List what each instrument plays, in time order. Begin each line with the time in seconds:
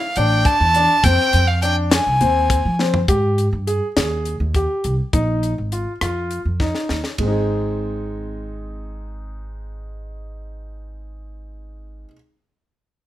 Already playing: violin F5
0.16 upright bass A1, grand piano D4, violin G5, closed hi-hat
0.45 violin A5, kick, closed hi-hat
0.60 upright bass E2
0.74 grand piano D4, closed hi-hat
1.04 upright bass F2, grand piano C4, violin G5, kick, closed hi-hat
1.33 upright bass F2, closed hi-hat
1.47 violin F5
1.62 grand piano D4, violin G5, closed hi-hat
1.91 violin G#5, snare, closed hi-hat
2.07 upright bass C2
2.21 upright bass D#2, grand piano C4, closed hi-hat
2.50 kick, closed hi-hat
2.65 upright bass F3
2.79 grand piano C4, snare
2.94 floor tom
3.08 upright bass G#2, grand piano G4, kick, closed hi-hat
3.38 closed hi-hat
3.53 upright bass G2
3.67 grand piano G#4, closed hi-hat
3.97 upright bass D#2, grand piano G#4, snare, closed hi-hat
4.25 closed hi-hat
4.40 upright bass D#2
4.54 grand piano G4, kick, closed hi-hat
4.84 upright bass C2, closed hi-hat
5.13 upright bass A#1, grand piano D#4, kick, closed hi-hat
5.43 closed hi-hat
5.58 upright bass G#1
5.72 grand piano F4, closed hi-hat
6.01 upright bass F2, grand piano F4, cross-stick, closed hi-hat
6.31 closed hi-hat
6.45 upright bass F2
6.60 grand piano D#4, kick, snare
6.75 snare
6.89 upright bass D#2, snare
7.04 snare
7.18 upright bass G#1, grand piano G#3, kick, ride
7.23 grand piano C4
7.27 grand piano D#4 G#4